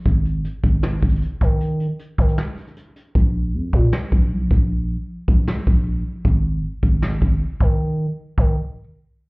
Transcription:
<<
  \new Staff \with { instrumentName = "808-style bass" } { \clef bass \time 4/4 \key aes \mixolydian \tempo 4 = 155 aes,,4 r8 aes,,4 aes,,8 r8 ees8~ | ees8. r8. ees8 r2 | bes,,4 f,8 bes,8 r8 bes,,8 c,16 bes,,16 bes,,8~ | bes,,8. r8. bes,,8 r8 bes,,4 r8 |
aes,,4 r8 aes,,4 aes,,8 r8 ees8~ | ees8. r8. ees8 r2 | }
  \new DrumStaff \with { instrumentName = "Drums" } \drummode { \time 4/4 <hh bd>8 hh8 hh8 <hh bd>8 \tuplet 3/2 { sn16 r16 r16 <hh bd>16 hh16 hh16 } hh8 <hh bd>8 | hh8 hh8 hh8 <hh bd>16 hh16 sn8 hh16 hh16 hh8 hh8 | bd4 r8 bd8 sn8 bd8 r8 bd8 | r4 r8 bd8 sn8 bd8 r4 |
bd4 r8 bd8 sn8 bd8 r8 bd8 | r4 r8 bd8 r4 r4 | }
>>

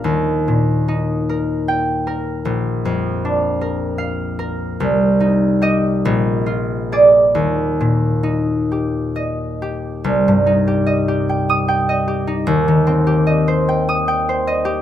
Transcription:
\new Staff \with { instrumentName = "Harp" } { \time 6/8 \key ees \major \tempo 4. = 50 << { r2 g''4 | r2 f''4 | r4 ees''8 r4 d''8 | r2 ees''4~ |
\key c \minor ees''4.~ ees''16 ees'''4~ ees'''16~ | ees'''4.~ ees'''16 ees'''4~ ees'''16 | } \\ { <ees, bes'>8 bes,8 ees'8 bes'4 bes'8 | bes,,8 f,8 d'8 bes'4 bes'8 | c,8 ees'8 g'8 bes,,8 f'8 aes'8 | ees,8 bes,8 ees'8 g'4 g'8 |
c,16 g,16 ees'16 g'16 ees''16 g'16 g''8 g''16 ees''16 g'16 ees'16 | ees,16 ees16 c'16 g'16 ees''16 c''16 g''8 g''16 c''16 ees''16 g'16 | } >> }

